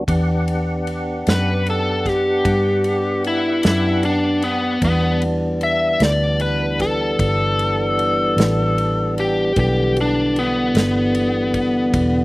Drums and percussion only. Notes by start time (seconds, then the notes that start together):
0.08 kick, ride
0.48 ride
0.87 ride
1.27 snare, ride
1.66 ride
2.06 kick, snare, ride
2.45 kick, ride
2.84 ride
3.24 ride
3.63 snare, ride
4.03 ride
4.42 ride
4.82 kick, ride
5.22 ride
5.61 ride
6.00 snare, ride
6.40 ride
6.79 kick, snare, ride
7.19 kick, ride
7.59 ride
7.99 ride
8.38 snare, ride
8.78 ride
9.18 ride
9.56 kick, ride
9.97 ride
10.36 ride
10.75 snare, ride
11.15 ride
11.54 kick, ride
11.94 kick, ride